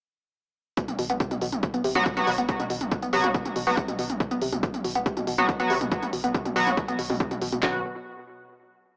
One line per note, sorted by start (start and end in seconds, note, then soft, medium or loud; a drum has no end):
0.77 0.83 B2 medium
0.77 kick loud
0.77 closed hi-hat medium
0.88 0.98 B1 medium
0.88 closed hi-hat medium
0.88 mid tom medium
0.99 1.09 B1 loud
0.99 1.02 B2 medium
0.99 open hi-hat loud
1.10 1.20 B1 medium
1.10 1.16 B3 medium
1.10 closed hi-hat medium
1.10 mid tom medium
1.20 1.29 C3 medium
1.20 kick loud
1.20 closed hi-hat medium
1.31 1.41 B1 medium
1.31 1.37 B2 medium
1.31 closed hi-hat medium
1.31 mid tom medium
1.41 1.52 B1 loud
1.41 1.48 B2 medium
1.41 open hi-hat loud
1.52 1.63 B1 medium
1.52 closed hi-hat medium
1.52 mid tom loud
1.63 1.67 B2 medium
1.63 kick loud
1.63 closed hi-hat medium
1.74 1.84 B1 medium
1.74 1.80 B3 medium
1.74 closed hi-hat medium
1.74 mid tom medium
1.84 1.95 B1 loud
1.84 1.94 C3 medium
1.84 open hi-hat loud
1.95 2.06 B1 medium
1.95 2.01 B2 medium
1.95 2.04 F#3 loud
1.95 2.04 B3 medium
1.95 2.04 F#4 loud
1.95 closed hi-hat medium
1.95 mid tom medium
2.06 2.12 B2 medium
2.06 kick loud
2.06 closed hi-hat medium
2.17 2.27 B1 medium
2.17 2.30 F#3 loud
2.17 2.30 B3 medium
2.17 2.30 F#4 loud
2.17 closed hi-hat medium
2.17 mid tom medium
2.27 2.38 B1 loud
2.27 2.31 B2 medium
2.27 open hi-hat loud
2.38 2.49 B1 medium
2.38 2.44 B3 medium
2.38 closed hi-hat medium
2.38 mid tom medium
2.49 2.58 C3 medium
2.49 kick loud
2.49 closed hi-hat medium
2.60 2.69 B1 medium
2.60 2.66 B2 medium
2.60 closed hi-hat medium
2.60 mid tom medium
2.70 2.81 B1 loud
2.70 2.76 B2 medium
2.70 open hi-hat loud
2.81 2.91 B1 medium
2.81 closed hi-hat medium
2.81 mid tom medium
2.91 2.95 B2 medium
2.91 kick loud
2.91 closed hi-hat medium
3.02 3.12 B1 medium
3.02 3.08 B3 medium
3.02 closed hi-hat medium
3.02 mid tom medium
3.13 3.23 B1 loud
3.13 3.22 C3 medium
3.13 3.26 F#3 medium
3.13 3.26 B3 medium
3.13 3.26 F#4 loud
3.13 open hi-hat loud
3.24 3.34 B1 medium
3.24 3.30 B2 medium
3.24 closed hi-hat medium
3.24 mid tom medium
3.34 3.41 B2 medium
3.34 kick loud
3.34 closed hi-hat medium
3.45 3.55 B1 medium
3.45 closed hi-hat medium
3.45 mid tom medium
3.56 3.66 B1 loud
3.56 3.60 B2 medium
3.56 open hi-hat loud
3.67 3.77 B1 medium
3.67 3.75 F#3 medium
3.67 3.75 B3 medium
3.67 3.73 B3 medium
3.67 3.75 F#4 medium
3.67 open hi-hat medium
3.67 mid tom medium
3.77 3.87 C3 medium
3.77 kick loud
3.77 closed hi-hat medium
3.88 3.98 B1 medium
3.88 3.94 B2 medium
3.88 closed hi-hat medium
3.88 mid tom medium
3.99 4.09 B1 loud
3.99 4.05 B2 medium
3.99 open hi-hat loud
4.10 4.20 B1 medium
4.10 closed hi-hat medium
4.10 mid tom medium
4.20 4.24 B2 medium
4.20 kick loud
4.20 closed hi-hat medium
4.31 4.41 B1 medium
4.31 4.37 B3 medium
4.31 closed hi-hat medium
4.31 mid tom medium
4.42 4.52 B1 loud
4.42 4.51 C3 medium
4.42 open hi-hat loud
4.53 4.63 B1 medium
4.53 4.58 B2 medium
4.53 closed hi-hat medium
4.53 mid tom medium
4.63 4.69 B2 medium
4.63 kick loud
4.63 closed hi-hat medium
4.74 4.84 B1 medium
4.74 closed hi-hat medium
4.74 mid tom medium
4.84 4.95 B1 loud
4.84 4.88 B2 medium
4.84 open hi-hat loud
4.95 5.06 B1 medium
4.95 5.01 B3 medium
4.95 closed hi-hat medium
4.95 mid tom medium
5.06 5.15 C3 medium
5.06 kick loud
5.06 closed hi-hat medium
5.17 5.27 B1 medium
5.17 5.23 B2 medium
5.17 closed hi-hat medium
5.17 mid tom medium
5.27 5.38 B1 loud
5.27 5.33 B2 medium
5.27 open hi-hat loud
5.38 5.49 B1 medium
5.38 5.46 F#3 loud
5.38 5.46 B3 medium
5.38 5.46 F#4 loud
5.38 closed hi-hat medium
5.38 mid tom medium
5.49 5.52 B2 medium
5.49 kick loud
5.49 closed hi-hat medium
5.60 5.70 B1 medium
5.60 5.73 F#3 loud
5.60 5.73 B3 medium
5.60 5.66 B3 medium
5.60 5.73 F#4 loud
5.60 closed hi-hat medium
5.60 mid tom medium
5.70 5.81 B1 loud
5.70 5.79 C3 medium
5.70 open hi-hat loud
5.81 5.91 B1 medium
5.81 5.87 B2 medium
5.81 closed hi-hat medium
5.81 mid tom medium
5.92 5.98 B2 medium
5.92 kick loud
5.92 closed hi-hat medium
6.03 6.12 B1 medium
6.03 closed hi-hat medium
6.03 mid tom medium
6.13 6.23 B1 loud
6.13 6.17 B2 medium
6.13 open hi-hat loud
6.24 6.34 B1 medium
6.24 6.30 B3 medium
6.24 closed hi-hat medium
6.24 mid tom medium
6.34 6.44 C3 medium
6.34 kick loud
6.34 closed hi-hat medium
6.45 6.55 B1 medium
6.45 6.51 B2 medium
6.45 closed hi-hat medium
6.45 mid tom medium
6.56 6.66 B1 loud
6.56 6.62 B2 medium
6.56 6.69 F#3 medium
6.56 6.69 B3 medium
6.56 6.69 F#4 loud
6.56 open hi-hat loud
6.67 6.77 B1 medium
6.67 closed hi-hat medium
6.67 mid tom medium
6.77 6.81 B2 medium
6.77 kick loud
6.77 closed hi-hat medium
6.88 6.98 B1 medium
6.88 6.94 B3 medium
6.88 closed hi-hat medium
6.88 mid tom medium
6.99 7.09 B1 loud
6.99 7.02 B2 medium
6.99 open hi-hat loud
7.10 7.20 B1 medium
7.10 7.16 B2 loud
7.10 open hi-hat medium
7.10 mid tom medium
7.20 7.26 C3 medium
7.20 kick loud
7.20 closed hi-hat medium
7.31 7.41 B1 medium
7.31 7.37 B2 medium
7.31 closed hi-hat medium
7.31 mid tom medium
7.42 7.52 B1 loud
7.42 7.48 B2 medium
7.42 open hi-hat loud
7.52 7.62 B1 medium
7.52 7.58 B2 medium
7.52 closed hi-hat medium
7.52 mid tom medium
7.63 7.83 B1 loud
7.63 7.83 B2 loud
7.63 7.79 F#3 medium
7.63 7.79 B3 medium
7.63 7.79 F#4 loud
7.63 kick loud
7.63 snare loud
7.63 clap medium